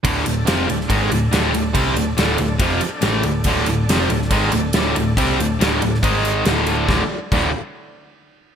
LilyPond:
<<
  \new Staff \with { instrumentName = "Tonewheel organ" } { \time 4/4 \key d \phrygian \tempo 4 = 140 <d' a' d''>1~ | <d' a' d''>1~ | <d' a' d''>1~ | <d' a' d''>2 <gis dis' bes'>4 <d' a' d''>4 |
<d' a' d''>8 r2. r8 | }
  \new Staff \with { instrumentName = "Distorted electric guitar" } { \clef bass \time 4/4 \key d \phrygian <d, a, d>8 <d, a,>8 <f, c f>8 <d, a,>8 <gis, ees gis>8 <d, a,>8 <d, a, d>8 <d, a,>8 | <c g c'>8 <d, a,>8 <d, a, d>8 <d, a,>8 <f, c f>8 r8 <a, e a>8 <d, a,>8 | <d, a, d>8 <d, a,>8 <f, c f>8 <d, a,>8 <gis, ees gis>8 <d, a,>8 <d, a, d>8 <d, a,>8 | <c g c'>8 <d, a,>8 <d, a, d>8 <d, a,>8 <gis, dis gis>4 <d, a, d>4 |
<d, a, d>8 r8 <d, a, d>8 r2 r8 | }
  \new Staff \with { instrumentName = "Distorted electric guitar" } { \clef bass \time 4/4 \key d \phrygian <d, a, d>8 <d, a,>8 <f, c f>8 <d, a,>8 <gis, ees gis>8 <d, a,>8 <d, a, d>8 <d, a,>8 | <c g c'>8 <d, a,>8 <d, a, d>8 <d, a,>8 <f, c f>8 r8 <a, e a>8 <d, a,>8 | <d, a, d>8 <d, a,>8 <f, c f>8 <d, a,>8 <gis, ees gis>8 <d, a,>8 <d, a, d>8 <d, a,>8 | <c g c'>8 <d, a,>8 <d, a, d>8 <d, a,>8 <gis, dis gis>4 <d, a, d>4 |
<d, a, d>8 r8 <d, a, d>8 r2 r8 | }
  \new Staff \with { instrumentName = "Picked electric bass" } { \clef bass \time 4/4 \key d \phrygian d,,8 d,,8 f,,8 d,,8 gis,,8 d,,8 d,,8 d,,8 | c,8 d,,8 d,,8 d,,8 f,,8 r8 a,,8 d,,8 | d,,8 d,,8 f,,8 d,,8 gis,,8 d,,8 d,,8 d,,8 | c,8 d,,8 d,,8 d,,8 gis,,4 d,,4 |
d,,8 r8 d,,8 r2 r8 | }
  \new DrumStaff \with { instrumentName = "Drums" } \drummode { \time 4/4 <bd cymr>8 cymr8 <cymr sn>8 cymr16 sn16 <bd cymr>8 cymr8 <cymr sn>8 cymr8 | <bd cymr>8 cymr8 <cymr sn>8 cymr8 <bd cymr>8 cymr8 <cymr sn>8 cymr8 | <bd cymr>8 cymr8 <cymr sn>8 cymr16 sn16 <bd cymr>8 cymr8 <cymr sn>8 cymr8 | <bd cymr>8 cymr8 <cymr sn>8 cymr16 sn16 <bd cymr>8 cymr8 <cymr sn>8 cymr8 |
<bd sn>4 <cymc bd>4 r4 r4 | }
>>